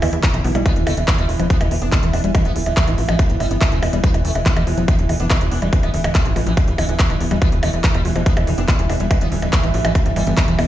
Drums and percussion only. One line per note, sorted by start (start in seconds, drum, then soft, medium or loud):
0.02 open hi-hat loud
0.02 percussion blips medium
0.13 closed hi-hat medium
0.23 kick loud
0.23 clap loud
0.23 closed hi-hat loud
0.34 closed hi-hat medium
0.34 percussion blips soft
0.45 open hi-hat medium
0.55 closed hi-hat medium
0.55 percussion blips soft
0.66 kick loud
0.66 closed hi-hat loud
0.66 percussion blips soft
0.76 closed hi-hat medium
0.87 open hi-hat loud
0.87 percussion blips medium
0.97 closed hi-hat medium
1.08 kick loud
1.08 clap loud
1.08 closed hi-hat medium
1.18 closed hi-hat medium
1.18 percussion blips soft
1.29 open hi-hat medium
1.40 closed hi-hat medium
1.40 percussion blips soft
1.50 kick loud
1.50 closed hi-hat medium
1.61 closed hi-hat medium
1.61 percussion blips medium
1.71 open hi-hat loud
1.82 closed hi-hat medium
1.92 kick loud
1.92 clap loud
1.92 closed hi-hat loud
1.92 percussion blips soft
2.03 closed hi-hat medium
2.13 open hi-hat medium
2.13 percussion blips soft
2.24 closed hi-hat medium
2.35 kick loud
2.35 closed hi-hat loud
2.35 percussion blips medium
2.45 closed hi-hat medium
2.56 open hi-hat loud
2.66 closed hi-hat medium
2.66 percussion blips soft
2.77 kick loud
2.77 clap loud
2.77 closed hi-hat medium
2.87 closed hi-hat medium
2.87 percussion blips soft
2.98 open hi-hat loud
3.09 closed hi-hat medium
3.09 percussion blips medium
3.19 kick loud
3.19 closed hi-hat medium
3.30 closed hi-hat medium
3.40 open hi-hat loud
3.40 percussion blips soft
3.51 closed hi-hat medium
3.61 kick loud
3.61 clap loud
3.61 closed hi-hat medium
3.61 percussion blips soft
3.72 closed hi-hat medium
3.83 open hi-hat loud
3.83 percussion blips medium
3.93 closed hi-hat medium
4.04 kick loud
4.04 closed hi-hat medium
4.14 closed hi-hat medium
4.14 percussion blips soft
4.25 open hi-hat loud
4.35 closed hi-hat medium
4.35 percussion blips soft
4.46 kick loud
4.46 clap loud
4.46 closed hi-hat medium
4.56 closed hi-hat medium
4.56 percussion blips medium
4.67 open hi-hat loud
4.78 closed hi-hat medium
4.88 kick loud
4.88 closed hi-hat medium
4.88 percussion blips soft
4.99 closed hi-hat medium
5.09 open hi-hat loud
5.09 percussion blips soft
5.20 closed hi-hat medium
5.30 kick loud
5.30 clap loud
5.30 closed hi-hat medium
5.30 percussion blips medium
5.41 closed hi-hat medium
5.52 open hi-hat loud
5.62 closed hi-hat medium
5.62 percussion blips soft
5.73 kick loud
5.73 closed hi-hat medium
5.83 closed hi-hat medium
5.83 percussion blips soft
5.94 open hi-hat loud
6.04 closed hi-hat medium
6.04 percussion blips medium
6.15 kick loud
6.15 clap loud
6.15 closed hi-hat medium
6.25 closed hi-hat soft
6.36 open hi-hat loud
6.36 percussion blips soft
6.47 closed hi-hat medium
6.57 kick loud
6.57 closed hi-hat medium
6.57 percussion blips soft
6.68 closed hi-hat medium
6.78 open hi-hat loud
6.78 percussion blips medium
6.89 closed hi-hat medium
6.99 kick loud
6.99 clap loud
6.99 closed hi-hat medium
7.10 closed hi-hat medium
7.10 percussion blips soft
7.21 open hi-hat loud
7.31 closed hi-hat medium
7.31 percussion blips soft
7.42 kick loud
7.42 closed hi-hat medium
7.42 percussion blips soft
7.52 closed hi-hat medium
7.63 open hi-hat loud
7.63 percussion blips medium
7.73 closed hi-hat medium
7.84 kick loud
7.84 clap loud
7.84 closed hi-hat medium
7.95 closed hi-hat medium
7.95 percussion blips soft
8.05 open hi-hat loud
8.16 closed hi-hat soft
8.16 percussion blips soft
8.26 kick loud
8.26 closed hi-hat medium
8.37 closed hi-hat medium
8.37 percussion blips medium
8.47 open hi-hat loud
8.58 closed hi-hat medium
8.68 kick loud
8.68 clap loud
8.68 closed hi-hat medium
8.68 percussion blips soft
8.79 closed hi-hat medium
8.90 open hi-hat medium
8.90 percussion blips soft
9.00 closed hi-hat medium
9.11 kick loud
9.11 closed hi-hat medium
9.11 percussion blips medium
9.21 closed hi-hat medium
9.32 open hi-hat loud
9.42 closed hi-hat medium
9.42 percussion blips soft
9.53 kick loud
9.53 clap loud
9.53 closed hi-hat medium
9.63 closed hi-hat medium
9.63 percussion blips soft
9.74 open hi-hat medium
9.85 closed hi-hat medium
9.85 percussion blips medium
9.95 kick loud
9.95 closed hi-hat medium
10.06 closed hi-hat medium
10.16 open hi-hat loud
10.16 percussion blips soft
10.27 closed hi-hat medium
10.37 kick loud
10.37 clap loud
10.37 closed hi-hat medium
10.37 percussion blips soft
10.48 closed hi-hat medium
10.59 open hi-hat medium
10.59 percussion blips medium